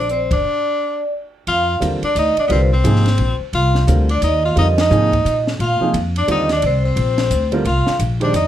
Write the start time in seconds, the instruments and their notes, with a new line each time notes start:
Already playing: upright bass A#1
0.00 vibraphone D5
0.09 tenor saxophone C4, vibraphone C5, closed hi-hat
0.31 upright bass F#1, tenor saxophone D4, vibraphone D5, kick, ride
1.47 upright bass F2, tenor saxophone F4, vibraphone F5, ride
1.80 upright bass D#2, grand piano D3 G3 C4 F4 A#4, hi-hat pedal, ride
2.02 tenor saxophone D4, vibraphone D5, muted upright bass stroke, ride
2.15 upright bass D2, tenor saxophone D#4, vibraphone D#5, hi-hat pedal, ride
2.37 tenor saxophone D4, vibraphone D5, muted upright bass stroke, ride
2.47 upright bass C2, grand piano D3 G3 C4 F4 A#4, tenor saxophone B3, vibraphone B4, ride
2.51 tenor saxophone C4, vibraphone C5
2.73 tenor saxophone C4, vibraphone C5
2.84 upright bass G#1, grand piano C3 F3 A#3 D#4 G#4, hi-hat pedal, ride
2.96 snare
3.06 snare, ride
3.18 upright bass A#1, ride
3.40 muted upright bass stroke
3.53 upright bass C2, tenor saxophone F4, ride
3.57 vibraphone F5
3.75 snare
3.87 upright bass D2, grand piano D3 G3 C4 F4 A#4, hi-hat pedal, ride
4.09 tenor saxophone D4, ride
4.14 vibraphone D5
4.22 upright bass D#2, tenor saxophone D#4, hi-hat pedal, ride
4.27 vibraphone D#5
4.45 tenor saxophone F4, vibraphone F5
4.55 upright bass F2, grand piano D3 G3 C4 F4 A#4, tenor saxophone D#4, ride
4.61 vibraphone D#5
4.78 tenor saxophone D#4, vibraphone D#5, snare, ride
4.90 upright bass G#2, grand piano C3 F3 A#3 D#4 G#4, hi-hat pedal
5.13 kick, ride
5.25 upright bass A#2, hi-hat pedal, ride
5.47 snare
5.59 upright bass A#2, tenor saxophone F4, ride
5.64 vibraphone F5
5.80 grand piano C3 F3 A#3 D#4 G#4, muted upright bass stroke
5.94 upright bass F2, hi-hat pedal, ride
6.16 tenor saxophone D4, vibraphone D5, ride
6.27 upright bass D#2, grand piano D3 G3 C4 F4 G4, hi-hat pedal, ride
6.31 tenor saxophone D#4, vibraphone D#5
6.49 tenor saxophone D4, snare, ride
6.55 vibraphone D5
6.62 upright bass C2, tenor saxophone C4, ride
6.67 vibraphone C5
6.85 tenor saxophone C4, vibraphone C5
6.96 upright bass A#1, ride
7.18 snare, ride
7.31 upright bass D2, hi-hat pedal, ride
7.52 grand piano D3 G3 C4 F4 A#4, ride
7.65 upright bass C2, tenor saxophone F4, ride
7.69 vibraphone F5
7.87 muted upright bass stroke, snare
7.99 upright bass A#1, hi-hat pedal, ride
8.20 grand piano D#3 G#3 D4 G4 C5, tenor saxophone D4, ride
8.24 vibraphone D5
8.33 upright bass F2, tenor saxophone D#4, vibraphone D#5, hi-hat pedal, ride